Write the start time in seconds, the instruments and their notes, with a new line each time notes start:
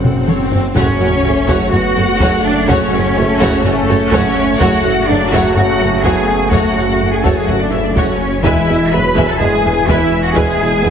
Already playing: detuned saw bass F#1, french horn section C#3 C#4, violin section F#5, swell
0.04 double bass section F#1, synth pluck C#4, viola section A4, violin section A4, taiko low-mid
0.28 double bass section F#1, cello section F#2, synth pluck F#3, viola section A4, violin section C#5, taiko mid
0.51 double bass section F#1, cello section F#2, synth pluck C#4, viola section A4, violin section C#5, taiko low
0.75 detuned saw bass F#1, tuba F#1, double bass section F#2, trombone section C#3 A3, synth pluck F#3, french horn section F#3, viola section A3 F#4, cello section C#4, violin section C#5 F#5, taiko, sub drop
1.00 tuba F#1, double bass section F#2, viola section A3 F#4, synth pluck F#4, violin section C#5 F#5
1.23 tuba F#1, double bass section F#2, viola section A3 F#4, synth pluck A3, french horn section A3, violin section A4 C#5
1.48 tuba F#1, double bass section F#2, synth pluck F#3, viola section A3 F#4, violin section C#5 F#5, taiko
1.71 tuba F#1, double bass section F#2, synth pluck A3, viola section A3 F#4, french horn section B3, cello section F#4, violin section C#5 F#5, taiko low
1.95 tuba F#1, double bass section F#2, synth pluck A3, viola section A3 F#4, violin section A4 C#5
2.19 tuba F#1, double bass section F#2, synth pluck F#3, french horn section A3, viola section A3 F#4, violin section C#5 F#5, taiko
2.45 cello section D4, violin section D5
2.67 tuba F#1, double bass section F#2, synth pluck F#3, french horn section F#3, viola section A3 F#4, cello section C#4, violin section C#5 F#5, taiko
2.92 tuba F#1, double bass section F#2, viola section A3 F#4, synth pluck F#4, violin section C#5 F#5
3.16 tuba F#1, double bass section F#2, viola section A3 F#4, synth pluck A3, french horn section A3, violin section A4 C#5
3.40 tuba F#1, double bass section F#2, synth pluck F#3, viola section A3 F#4, violin section C#5 F#5, taiko
3.64 tuba F#1, double bass section F#2, cello section A3, synth pluck A3, viola section A3 F#4, french horn section C#4, violin section A4 C#5 F#5, taiko low
3.88 tuba F#1, double bass section F#2, viola section A3 F#4, synth pluck A3, violin section A4 C#5
4.12 tuba F#1, double bass section F#2, synth pluck F#3, viola section A3 F#4, french horn section A3, cello section C#4, violin section C#5 F#5, taiko
4.58 tuba F#1, detuned saw bass F#1, double bass section F#2, trombone section C#3 A3, synth pluck F#3, viola section A3 F#4, french horn section A3, cello section F#4, violin section C#5 F#5, taiko
4.84 tuba F#1, double bass section F#2, viola section A3 F#4, synth pluck F#4, violin section C#5 F#5
5.07 tuba F#1, double bass section F#2, french horn section F#3, viola section A3 F#4, synth pluck A3, cello section D4, violin section A4 C#5 D5
5.31 tuba F#1, double bass section F#2, synth pluck F#3, viola section A3 F#4, cello section E4, violin section C#5 E5 F#5, taiko
5.44 cello section F#4, violin section F#5
5.55 tuba F#1, double bass section F#2, synth pluck A3, viola section A3 F#4, cello section F#4, violin section C#5 F#5, taiko low
5.79 tuba F#1, double bass section F#2, viola section A3 F#4, synth pluck A3, violin section A4 C#5, taiko rim
6.03 tuba F#1, double bass section F#2, synth pluck F#3, viola section A3 F#4, french horn section B3, cello section G#4, violin section C#5 F#5 G#5, taiko
6.51 tuba F#1, double bass section F#2, synth pluck F#3, french horn section A3, viola section A3 F#4, cello section F#4, violin section C#5 F#5, taiko
6.76 tuba F#1, double bass section F#2, viola section A3 F#4, synth pluck F#4, violin section C#5 F#5
6.99 tuba F#1, double bass section F#2, synth pluck A3, viola section A3 F#4, violin section A4 C#5
7.12 cello section G#4, violin section G#5
7.23 tuba F#1, double bass section F#2, synth pluck F#3, viola section A3 F#4, cello section A4, violin section C#5 F#5 A5, taiko
7.35 cello section G#4, violin section G#5
7.47 tuba F#1, double bass section F#2, synth pluck A3, viola section A3 F#4, cello section F#4, violin section C#5 F#5, taiko low
7.59 cello section D4, violin section D5
7.71 tuba F#1, double bass section F#2, synth pluck A3, viola section A3 F#4, cello section E4, violin section A4 C#5 E5
7.84 cello section D4, violin section D5
7.95 tuba F#1, double bass section F#2, synth pluck F#3, viola section A3 F#4, cello section C#4, violin section C#5 F#5, taiko
8.43 detuned saw bass E1, tuba E1, double bass section E2, trombone section B2 G#3, synth pluck E3, french horn section G#3, viola section G#3 B4, cello section E4, violin section E5 G#5, taiko
8.67 tuba E1, double bass section E2, viola section G#3 B4, synth pluck E4, violin section E5 G#5
8.90 tuba E1, double bass section E2, french horn section F#3, synth pluck G#3, viola section G#3 B4, violin section B4 E5 B5, cello section B4
9.15 tuba E1, double bass section E2, synth pluck E3, viola section G#3 B4, violin section E5 G#5, taiko
9.28 cello section A4, violin section A5
9.37 double bass section E2, trombone section B2 G#3, french horn section E3, synth pluck G#3, viola section G#3 B4, cello section G#4, violin section E5 G#5, taiko low
9.41 tuba E1
9.64 tuba E1, double bass section E2, synth pluck G#3, viola section G#3 B4, violin section B4 E5
9.87 tuba E1, double bass section E2, synth pluck E3, viola section G#3 B4, cello section E4, violin section E5 G#5, taiko
10.24 cello section F#4, violin section F#5
10.35 tuba E1, double bass section E2, trombone section B2 G#3, synth pluck E3, viola section G#3 B4, french horn section G#3, cello section G#4, violin section E5 G#5, taiko
10.59 tuba E1, double bass section E2, viola section G#3 B4, synth pluck E4, violin section E5 G#5
10.82 tuba E1, double bass section E2, viola section G#3 B4, synth pluck G#3, french horn section B3, violin section B4 E5